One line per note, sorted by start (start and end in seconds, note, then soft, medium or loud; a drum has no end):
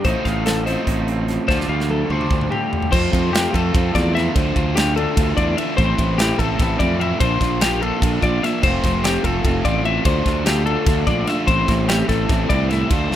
0.04 0.13 A1 medium
0.04 1.49 A2 medium
0.04 0.69 A3 medium
0.04 0.68 C4 medium
0.04 0.87 D#4 medium
0.04 0.68 F4 medium
0.04 0.66 A4 medium
0.04 0.25 C5 medium
0.04 0.65 D#5 medium
0.04 kick loud
0.04 closed hi-hat medium
0.25 0.75 A1 medium
0.25 0.67 A3 medium
0.25 0.46 F5 medium
0.25 kick medium
0.25 snare soft
0.25 closed hi-hat medium
0.46 1.29 F3 medium
0.46 0.66 A4 medium
0.46 snare loud
0.46 closed hi-hat medium
0.66 1.70 A3 medium
0.66 1.48 A3 medium
0.66 1.49 C4 medium
0.66 1.50 F4 medium
0.66 1.50 A4 medium
0.66 1.07 C5 medium
0.66 1.47 D#5 medium
0.66 closed hi-hat medium
0.87 1.37 A1 medium
0.87 1.46 D#4 medium
0.87 kick medium
0.87 closed hi-hat medium
1.08 1.52 C4 medium
1.08 closed hi-hat medium
1.28 1.74 F3 medium
1.28 snare soft
1.28 closed hi-hat medium
1.47 1.65 D2 medium
1.47 2.92 D2 medium
1.47 2.08 D3 medium
1.47 2.09 A3 medium
1.47 2.09 D4 medium
1.47 2.10 F4 medium
1.47 2.31 F4 medium
1.47 2.10 A4 medium
1.47 1.69 C5 medium
1.47 kick medium
1.47 snare soft
1.51 2.10 D5 loud
1.60 snare soft
1.68 2.02 D2 medium
1.68 2.10 G3 medium
1.68 1.90 F5 medium
1.80 snare soft
1.89 2.71 D3 medium
1.89 2.11 A4 medium
1.89 high tom medium
2.09 2.26 D2 medium
2.09 2.90 D3 medium
2.09 2.93 G3 medium
2.09 2.91 A3 medium
2.09 2.91 D4 medium
2.09 2.92 F4 medium
2.09 2.92 A4 medium
2.09 2.51 C5 medium
2.09 2.92 D5 medium
2.09 mid tom medium
2.21 mid tom medium
2.31 2.47 D2 medium
2.31 kick loud
2.41 mid tom medium
2.51 2.90 C4 medium
2.51 2.92 G4 medium
2.51 mid tom medium
2.72 2.92 D3 medium
2.72 floor tom medium
2.82 floor tom medium
2.91 3.09 F2 medium
2.91 3.31 F3 loud
2.91 3.15 A3 medium
2.91 3.13 C4 loud
2.91 3.12 F4 loud
2.91 3.33 C5 medium
2.91 kick loud
2.91 crash loud
3.12 3.46 F2 medium
3.12 3.33 A3 medium
3.12 3.34 C4 medium
3.12 3.35 F4 medium
3.12 kick medium
3.12 ride medium
3.32 3.73 F3 medium
3.32 3.55 A3 medium
3.32 3.54 C4 medium
3.32 3.51 F4 medium
3.32 3.54 G4 medium
3.32 ride medium
3.36 snare loud
3.52 3.70 F2 loud
3.52 3.75 A3 medium
3.52 3.76 C4 medium
3.52 3.76 F4 medium
3.52 3.95 A4 medium
3.52 kick medium
3.52 ride medium
3.74 3.91 F2 loud
3.74 4.13 F3 medium
3.74 3.96 A3 medium
3.74 3.95 C4 medium
3.74 3.92 F4 medium
3.74 kick loud
3.74 ride loud
3.93 4.28 E2 loud
3.93 4.14 A3 medium
3.93 4.16 C4 medium
3.93 4.16 F4 medium
3.93 4.15 D5 medium
3.93 kick medium
3.93 snare soft
3.93 ride medium
4.14 4.33 F3 loud
4.14 4.35 A3 loud
4.14 4.36 C4 loud
4.14 4.35 F4 loud
4.14 4.35 E5 medium
4.14 snare soft
4.14 ride medium
4.34 4.52 D2 medium
4.34 4.74 D3 loud
4.34 4.58 A3 loud
4.34 4.56 D4 loud
4.34 4.54 F4 loud
4.34 4.76 C5 medium
4.34 kick loud
4.34 ride loud
4.55 5.05 D2 medium
4.55 4.76 A3 medium
4.55 4.76 D4 medium
4.55 4.78 F4 medium
4.55 kick medium
4.55 ride medium
4.75 5.14 D3 medium
4.75 4.99 A3 medium
4.75 4.97 D4 loud
4.75 4.95 F4 medium
4.75 4.96 G4 medium
4.75 snare loud
4.75 ride loud
4.96 5.17 A3 medium
4.96 5.17 D4 medium
4.96 5.18 F4 medium
4.96 5.37 A4 medium
4.96 ride medium
5.15 5.33 D2 loud
5.15 5.56 D3 medium
5.15 5.40 A3 medium
5.15 5.37 D4 medium
5.15 5.36 F4 medium
5.15 kick loud
5.15 ride loud
5.37 5.54 E2 medium
5.37 5.58 A3 medium
5.37 5.58 D4 medium
5.37 5.59 F4 medium
5.37 5.57 D5 medium
5.37 kick medium
5.37 ride medium
5.57 5.77 D3 medium
5.57 5.79 A3 loud
5.57 5.78 D4 loud
5.57 5.78 F4 loud
5.57 5.76 E5 medium
5.57 ride medium
5.77 5.94 A1 medium
5.77 6.17 A2 medium
5.77 6.18 E3 loud
5.77 6.01 A3 loud
5.77 5.99 C4 loud
5.77 6.18 C5 medium
5.77 kick loud
5.77 ride medium
5.82 5.97 E4 loud
5.98 6.32 A1 medium
5.98 6.19 A3 medium
5.98 6.20 C4 medium
5.98 6.20 E4 medium
5.98 kick medium
5.98 ride medium
6.18 6.59 A2 medium
6.18 6.57 E3 medium
6.18 6.41 A3 medium
6.18 6.40 C4 medium
6.18 6.37 E4 loud
6.18 6.39 G4 medium
6.18 snare loud
6.18 ride loud
6.38 6.56 A1 medium
6.38 6.59 A3 medium
6.38 6.60 C4 medium
6.38 6.60 E4 medium
6.38 6.80 A4 medium
6.38 kick medium
6.38 ride medium
6.58 6.76 A1 loud
6.58 6.99 E3 medium
6.58 6.82 A3 medium
6.58 6.80 C4 medium
6.58 6.78 E4 medium
6.58 kick loud
6.58 snare soft
6.58 ride loud
6.79 7.13 F2 loud
6.79 7.00 A3 medium
6.79 7.01 C4 medium
6.79 7.01 E4 medium
6.79 7.00 D5 medium
6.79 kick medium
6.79 ride medium
6.99 7.19 A2 medium
6.99 7.19 E3 loud
6.99 7.21 A3 loud
6.99 7.22 C4 loud
6.99 7.20 E4 loud
6.99 7.20 E5 medium
6.99 ride medium
7.19 7.37 A#1 medium
7.19 7.59 A#2 medium
7.19 7.61 F3 loud
7.19 7.42 A#3 loud
7.19 7.41 D4 loud
7.19 7.40 F4 loud
7.19 7.61 C5 medium
7.19 kick loud
7.19 ride medium
7.40 7.90 A#1 medium
7.40 7.61 A#3 medium
7.40 7.62 D4 medium
7.40 7.63 F4 medium
7.40 kick medium
7.40 snare soft
7.40 ride medium
7.61 8.02 A#2 medium
7.61 8.02 F3 medium
7.61 7.83 A#3 medium
7.61 7.82 D4 medium
7.61 7.80 F4 medium
7.61 7.82 G4 medium
7.61 snare loud
7.61 ride loud
7.81 8.02 A#3 medium
7.81 8.03 D4 medium
7.81 8.04 F4 medium
7.81 8.22 A4 medium
7.81 ride medium
8.02 8.18 A#1 medium
8.02 8.43 F3 medium
8.02 8.24 A#3 medium
8.02 8.22 D4 medium
8.02 8.21 F4 medium
8.02 kick loud
8.02 ride loud
8.22 8.39 A#1 medium
8.22 8.43 A#3 medium
8.22 8.44 D4 medium
8.22 8.45 F4 medium
8.22 8.43 D5 medium
8.22 kick medium
8.22 ride medium
8.43 8.62 A#2 loud
8.43 8.62 F3 medium
8.43 8.62 A#3 loud
8.43 8.63 D4 loud
8.43 8.66 F4 loud
8.43 8.63 E5 medium
8.43 snare soft
8.43 ride medium
8.63 8.80 F1 loud
8.63 9.03 F3 medium
8.63 8.87 A3 loud
8.63 8.85 C4 loud
8.63 8.83 F4 loud
8.63 9.04 C5 medium
8.63 kick loud
8.63 crash medium
8.84 9.17 F1 medium
8.84 9.04 A3 medium
8.84 9.06 C4 medium
8.84 9.07 F4 medium
8.84 kick medium
8.84 snare soft
8.84 ride medium
9.04 9.43 F3 medium
9.04 9.27 A3 loud
9.04 9.25 C4 medium
9.04 9.23 F4 medium
9.04 9.24 G4 medium
9.04 snare loud
9.04 ride loud
9.24 9.41 F1 medium
9.24 9.45 A3 medium
9.24 9.46 C4 medium
9.24 9.46 F4 medium
9.24 9.65 A4 medium
9.24 kick medium
9.24 ride medium
9.44 9.61 F1 loud
9.44 9.83 F3 medium
9.44 9.67 A3 medium
9.44 9.66 C4 medium
9.44 9.63 F4 medium
9.44 kick loud
9.44 ride loud
9.65 9.98 A1 loud
9.65 9.85 A3 medium
9.65 9.86 C4 medium
9.65 9.86 F4 medium
9.65 9.85 D5 medium
9.65 kick medium
9.65 ride medium
9.84 10.04 F3 loud
9.84 10.05 A3 loud
9.84 10.06 C4 loud
9.84 10.06 F4 loud
9.84 10.05 E5 medium
9.84 ride medium
10.04 10.22 D2 medium
10.04 10.44 D3 loud
10.04 10.28 A3 medium
10.04 10.25 D4 loud
10.04 10.24 F4 loud
10.04 10.46 C5 medium
10.04 kick loud
10.04 ride loud
10.25 10.75 D2 medium
10.25 10.46 A3 medium
10.25 10.46 D4 medium
10.25 10.47 F4 medium
10.25 kick medium
10.25 snare soft
10.25 ride medium
10.45 10.84 D3 medium
10.45 10.68 A3 loud
10.45 10.66 D4 medium
10.45 10.64 F4 medium
10.45 10.65 G4 medium
10.45 snare loud
10.45 ride loud
10.65 10.86 A3 medium
10.65 10.86 D4 medium
10.65 10.87 F4 medium
10.65 11.07 A4 medium
10.65 ride medium
10.85 11.03 D2 loud
10.85 11.25 D3 medium
10.85 11.09 A3 medium
10.85 11.06 D4 medium
10.85 11.05 F4 medium
10.85 kick loud
10.85 snare soft
10.85 ride loud
11.06 11.24 A#1 loud
11.06 11.27 A3 medium
11.06 11.27 D4 medium
11.06 11.28 F4 medium
11.06 11.27 D5 medium
11.06 kick medium
11.06 ride medium
11.26 11.46 D3 medium
11.26 11.48 A3 medium
11.26 11.47 D4 loud
11.26 11.47 F4 loud
11.26 11.47 E5 medium
11.26 snare soft
11.26 ride medium
11.47 11.64 A1 medium
11.47 11.86 A2 medium
11.47 11.87 E3 loud
11.47 11.70 A3 loud
11.47 11.68 C4 loud
11.47 11.67 E4 loud
11.47 11.88 C5 loud
11.47 kick loud
11.47 ride loud
11.67 12.01 A1 medium
11.67 11.88 A3 medium
11.67 11.89 C4 medium
11.67 11.90 E4 medium
11.67 kick medium
11.67 snare soft
11.67 ride medium
11.87 12.28 A2 medium
11.87 12.27 E3 medium
11.87 12.10 A3 medium
11.87 12.09 C4 medium
11.87 12.07 E4 medium
11.87 12.08 G4 medium
11.87 snare loud
11.87 ride loud
12.08 12.25 A1 loud
12.08 12.28 A3 medium
12.08 12.29 C4 medium
12.08 12.31 E4 medium
12.08 12.49 A4 medium
12.08 kick medium
12.08 snare soft
12.08 ride medium
12.28 12.46 A1 loud
12.28 12.70 E3 medium
12.28 12.51 A3 medium
12.28 12.50 C4 medium
12.28 12.48 E4 medium
12.28 kick loud
12.28 snare soft
12.28 ride loud
12.48 12.83 C2 loud
12.48 12.71 A3 medium
12.48 12.71 C4 medium
12.48 12.72 E4 medium
12.48 12.69 D5 medium
12.48 kick medium
12.48 ride medium
12.69 12.89 A2 medium
12.69 12.88 E3 loud
12.69 12.90 A3 loud
12.69 12.91 C4 loud
12.69 12.92 E4 loud
12.69 12.91 E5 medium
12.69 snare soft
12.69 ride medium
12.89 13.07 D2 medium
12.89 13.16 D3 loud
12.89 13.12 A3 loud
12.89 13.11 D4 loud
12.89 13.09 F4 loud
12.89 13.16 C5 medium
12.89 kick loud
12.89 ride medium
13.10 13.16 D2 medium
13.10 13.16 D4 medium
13.10 13.16 F4 medium
13.10 snare medium